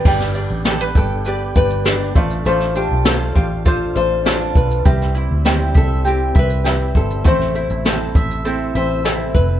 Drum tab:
CC |x---------------|----------------|----------------|----------------|
SH |--x-x-x-x-xxx-xx|x-x-x-x-x-x-x-xx|x-x-x-x-x-xxx-xx|x-xxx-xxx-x-x-x-|
SD |-o--o-------o---|-o--o-------o---|-o--o-------o---|-o--o-------o---|
BD |o-----o---o---o-|------o-o-----o-|o-----o---o---o-|o-----o-------o-|